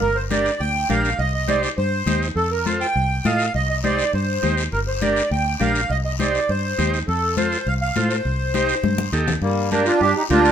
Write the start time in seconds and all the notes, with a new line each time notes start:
0.01 G1 A#4, high conga, long guiro
0.15 C5
0.30 D4 G4 A#4 D5, high conga, short guiro
0.46 short guiro
0.60 D2 G5, high conga, long guiro
0.89 A#1 D4 G4 A#4 F5, high conga, short guiro
1.05 short guiro
1.19 C2 D#5, high conga, long guiro
1.34 D#5
1.48 D#4 G4 C5 D5, high conga, short guiro
1.63 D5, short guiro
1.78 G2 C5, high conga, long guiro
2.06 D#2 D#4 G4 C5, high conga, short guiro
2.22 short guiro
2.35 F2 A4, high conga, long guiro
2.51 A#4
2.66 F4 A4 C5, high conga, short guiro
2.81 G5, short guiro
2.95 C2, high conga, long guiro
3.25 A2 F4 A4 D#5 F5, high conga, short guiro
3.39 short guiro
3.54 C2 D#5, high conga, long guiro
3.70 D#5
3.84 D#4 G4 C5 D5, high conga, short guiro
3.99 short guiro
4.13 G2 C5, high conga, long guiro
4.42 D#2 D#4 G4 C5, high conga, short guiro
4.57 short guiro
4.72 G1 A#4, high conga, long guiro
4.88 C5
5.02 D4 G4 A#4 D5, high conga, short guiro
5.16 short guiro
5.31 D2 G5, high conga, long guiro
5.60 A#1 D4 G4 A#4 F5, high conga, short guiro
5.75 short guiro
5.90 C2 D#5, high conga, long guiro
6.05 D#5
6.19 D#4 G4 C5 D5, high conga, short guiro
6.35 short guiro
6.49 G2 C5, high conga, long guiro
6.78 D#2 D#4 G4 C5, high conga, short guiro
6.94 short guiro
7.08 F2 A4, high conga, long guiro
7.37 F4 A4 C5, high conga, short guiro
7.52 short guiro
7.66 C2 F5, high conga, long guiro
7.82 F5
7.96 A2 F4 A4 C5, high conga, short guiro
8.10 C5, short guiro
8.25 C2, high conga, long guiro
8.54 D#4 G4 C5, high conga, short guiro
8.69 short guiro
8.83 G2, high conga, long guiro
8.98 high conga
9.12 D#2 D#4 G4 A4, short guiro
9.28 low conga, short guiro
9.41 G2 G3 A#3, high conga, long guiro
9.71 A#3 D4 G4 A#4, high conga, short guiro
9.86 D4 F4, short guiro
10.01 G2 D4 G4, high conga, long guiro
10.16 D#4 G4
10.30 D2 D4 F4 G4 A#4, high conga, short guiro
10.45 short guiro